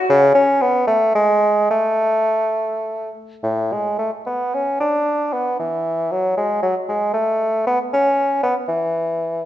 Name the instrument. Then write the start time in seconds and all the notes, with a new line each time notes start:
bassoon
0.10 C#3
0.35 C#4
0.61 B3
0.87 A3
1.15 G#3
1.71 A3
3.43 A2
3.72 G#3
3.98 A3
4.26 B3
4.54 C#4
4.80 D4
5.33 B3
5.59 E3
6.12 F#3
6.37 G#3
6.63 F#3
6.89 G#3
7.13 A3
7.67 B3
7.93 C#4
8.43 B3
8.68 E3